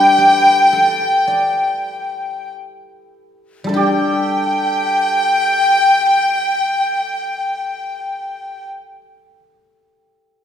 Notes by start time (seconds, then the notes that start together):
Already playing: G3 D4 G4 A4 B4 G5
0.18 G4
0.73 A4
1.27 D5
3.64 G3 A4
3.69 D4
3.74 G4 G5